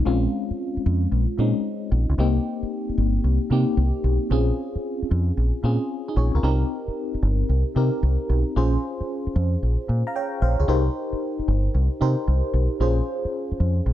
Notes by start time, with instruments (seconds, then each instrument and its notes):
0.05 fingered electric bass A#1, fm electric piano G#3 C4 C#4 F4
0.51 muted fingered electric bass stroke
0.77 muted fingered electric bass stroke
0.86 fingered electric bass F2
1.12 fingered electric bass A#1
1.38 fingered electric bass A#2, fm electric piano G#3 C4 C#4 D#4
1.92 fingered electric bass A#1
2.09 fingered electric bass C#2
2.18 fingered electric bass C2, fm electric piano A#3 C4 D#4 G4
2.63 muted fingered electric bass stroke
2.89 muted fingered electric bass stroke
2.98 fingered electric bass G1
3.24 fingered electric bass C2
3.50 fingered electric bass C3, fm electric piano A#3 C4 D#4 G4
3.77 fingered electric bass C2
4.04 fingered electric bass B1
4.31 fingered electric bass A#1, fm electric piano C4 C#4 F4 G#4
4.75 muted fingered electric bass stroke
5.02 muted fingered electric bass stroke
5.11 fingered electric bass F2
5.37 fingered electric bass A#1
5.64 fingered electric bass A#2, fm electric piano C4 C#4 F4 G#4
6.08 fm electric piano D#4 G#4
6.16 fingered electric bass A#1, fm electric piano G#4 C#5
6.35 fingered electric bass C#2, fm electric piano F4 A#4
6.43 fingered electric bass C2, fm electric piano C4 D#4 G4 A#4
6.88 muted fingered electric bass stroke
7.14 muted fingered electric bass stroke
7.23 fingered electric bass G1
7.49 fingered electric bass C2
7.76 fingered electric bass C3, fm electric piano C4 D#4 G4 A#4
8.03 fingered electric bass C2
8.29 fingered electric bass B1
8.56 fingered electric bass A#1, fm electric piano C#4 F4 G#4 C5
9.00 muted fingered electric bass stroke
9.27 muted fingered electric bass stroke
9.36 fingered electric bass F2
9.63 fingered electric bass A#1
9.89 fingered electric bass A#2
10.07 fm electric piano F5 A#5
10.16 fm electric piano C#5 G5
10.42 fingered electric bass A#1, fm electric piano C5 F5
10.60 fingered electric bass C#2, fm electric piano G#4 C#5
10.68 fingered electric bass C2, fm electric piano D#4 G4 A#4 C5
11.13 muted fingered electric bass stroke
11.39 muted fingered electric bass stroke
11.48 fingered electric bass G1
11.75 fingered electric bass C2
12.01 fingered electric bass C3, fm electric piano D#4 G4 A#4 C5
12.28 fingered electric bass C2
12.54 fingered electric bass B1
12.80 fingered electric bass A#1, fm electric piano C#4 F4 G#4 C5
13.25 muted fingered electric bass stroke
13.52 muted fingered electric bass stroke
13.60 fingered electric bass F2
13.86 fingered electric bass A#1